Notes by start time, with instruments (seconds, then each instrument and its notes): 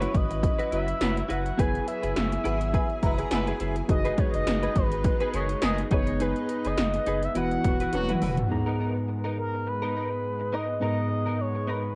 Already playing: analog synth pad F#3 E4 B4, tine electric piano C#4 E4 F#4 B4, analog synth lead C#5
0.01 clean electric guitar E4 F#4 B4, closed hi-hat
0.14 analog synth bass G#1, analog synth lead D#5, muted clean electric guitar stroke, kick, closed hi-hat
0.30 muted clean electric guitar stroke, closed hi-hat
0.43 muted clean electric guitar stroke, kick, closed hi-hat
0.59 clean electric guitar E4 F#4 B4, closed hi-hat
0.71 analog synth bass F#1, horn section F#3 B3 E4 B4, clean electric guitar E4 F#4 B4, analog synth lead E5, closed hi-hat
0.87 muted clean electric guitar stroke, closed hi-hat
1.00 analog synth bass F#1, horn section F#3 B3 E4 B4, snare, closed hi-hat, tambourine
1.16 muted clean electric guitar stroke, closed hi-hat
1.29 analog synth bass F#1, clean electric guitar E4 F#4 B4, analog synth lead F#5, closed hi-hat
1.45 muted clean electric guitar stroke, closed hi-hat
1.57 analog synth bass F#1, tine electric piano B3 E4 G#4 B4, clean electric guitar E4 G#4 B4, analog synth pad G#4, analog synth lead G#5, kick, closed hi-hat
1.75 closed hi-hat
1.87 analog synth lead E5, muted clean electric guitar stroke, closed hi-hat
2.02 analog synth bass F#1, clean electric guitar E4 G#4 B4, closed hi-hat
2.16 analog synth bass F#1, muted clean electric guitar stroke, snare, closed hi-hat, tambourine
2.31 muted clean electric guitar stroke, closed hi-hat
2.44 analog synth bass G#1, clean electric guitar E4 G#4 B4, synth bell F#5, closed hi-hat
2.60 muted clean electric guitar stroke, closed hi-hat
2.73 clean electric guitar E4 G#4 B4, synth bell G#5, kick, closed hi-hat
2.89 muted clean electric guitar stroke, closed hi-hat
3.02 analog synth bass F#1, horn section G#3 B3 E4 B4, synth bell A#5, muted clean electric guitar stroke, kick, closed hi-hat
3.18 clean electric guitar E4 G#4 B4, closed hi-hat
3.31 analog synth bass F#1, horn section G#3 B3 E4 B4, synth bell G#5, snare, closed hi-hat, tambourine
3.47 clean electric guitar E4 G#4 B4, closed hi-hat
3.60 analog synth bass F#1, clean electric guitar E4 G#4 B4, closed hi-hat
3.76 muted clean electric guitar stroke, closed hi-hat
3.88 analog synth bass F#1, analog synth pad G#3 B3 D#4, tine electric piano D#4 F#4 G#4 B4, analog synth lead D#5, muted clean electric guitar stroke, kick, closed hi-hat
4.05 clean electric guitar D#4 G#4 B4, closed hi-hat
4.17 clean electric guitar D#4 G#4 B4, analog synth lead C#5, kick, closed hi-hat
4.34 analog synth bass F#1, analog synth lead D#5, muted clean electric guitar stroke, closed hi-hat
4.47 analog synth bass F#1, muted clean electric guitar stroke, snare, closed hi-hat, tambourine
4.63 clean electric guitar D#4 G#4 B4, closed hi-hat
4.76 analog synth bass G#1, analog synth lead B4, muted clean electric guitar stroke, kick, closed hi-hat
4.92 muted clean electric guitar stroke, closed hi-hat
5.04 muted clean electric guitar stroke, kick, closed hi-hat
5.20 clean electric guitar D#4 G#4 B4, closed hi-hat
5.33 analog synth bass F#1, horn section D#3 G#3 B3 G#4, clean electric guitar D#4 G#4 B4, analog synth lead C#5, closed hi-hat
5.49 muted clean electric guitar stroke, closed hi-hat
5.62 analog synth bass F#1, horn section D#3 G#3 B3 G#4, analog synth lead D#5, snare, closed hi-hat, tambourine
5.78 muted clean electric guitar stroke, closed hi-hat
5.90 analog synth bass F#1, tine electric piano B3 D#4 G#4 B4, analog synth pad B3 D#4, clean electric guitar D#4 G#4 B4, analog synth lead C#5, kick, closed hi-hat
6.07 muted clean electric guitar stroke, closed hi-hat
6.20 clean electric guitar D#4 G#4 B4, analog synth lead B4, closed hi-hat
6.36 closed hi-hat
6.49 muted clean electric guitar stroke, closed hi-hat
6.65 analog synth bass F#1, clean electric guitar D#4 G#4 B4, analog synth lead D#5, closed hi-hat
6.77 analog synth bass F#1, muted clean electric guitar stroke, snare, closed hi-hat, tambourine
6.94 muted clean electric guitar stroke, closed hi-hat
7.06 analog synth bass F#1, clean electric guitar D#4 G#4 B4, closed hi-hat
7.23 analog synth lead E5, muted clean electric guitar stroke, closed hi-hat
7.35 analog synth bass E1, tine electric piano E3 B3 E4 F#4 B4, analog synth pad E3 F#4, clean electric guitar E4 F#4 B4, analog synth lead F#5, closed hi-hat
7.51 muted clean electric guitar stroke, closed hi-hat
7.64 analog synth bass E1, horn section F#3 B3 F#4, muted clean electric guitar stroke, kick, closed hi-hat
7.80 clean electric guitar E4 F#4 B4, closed hi-hat
7.93 analog synth bass E1, horn section F#3 B3 F#4, muted clean electric guitar stroke, closed hi-hat, high tom
8.09 clean electric guitar E4 F#4 B4, closed hi-hat, mid tom
8.22 analog synth bass E1, clean electric guitar E4 F#4 B4, mid tom, open hi-hat
8.37 muted clean electric guitar stroke, closed hi-hat, floor tom
8.50 tine electric piano G#2 B3 D#4 G#4 A#5, analog synth pad G#3 B3, muted clean electric guitar stroke
8.66 clean electric guitar B3 D#4 A#4
8.79 clean electric guitar B3 D#4 A#4
8.95 muted clean electric guitar stroke
9.08 muted clean electric guitar stroke
9.24 clean electric guitar B3 D#4 A#4
9.38 analog synth lead A#4, muted clean electric guitar stroke
9.54 muted clean electric guitar stroke
9.67 analog synth lead B4, muted clean electric guitar stroke
9.82 clean electric guitar B3 D#4 A#4
9.95 clean electric guitar B3 D#4 A#4
10.11 muted clean electric guitar stroke
10.40 muted clean electric guitar stroke
10.53 clean electric guitar B3 D#4 A#4, analog synth lead D#5
10.68 muted clean electric guitar stroke
10.80 tine electric piano G#2 B3 D#4 G#4 A#5, clean electric guitar B3 D#4 A#4, analog synth lead D#5
11.10 muted clean electric guitar stroke
11.26 clean electric guitar B3 D#4 A#4
11.39 analog synth lead C#5, muted clean electric guitar stroke
11.55 muted clean electric guitar stroke
11.68 clean electric guitar B3 D#4 A#4, analog synth lead B4
11.84 muted clean electric guitar stroke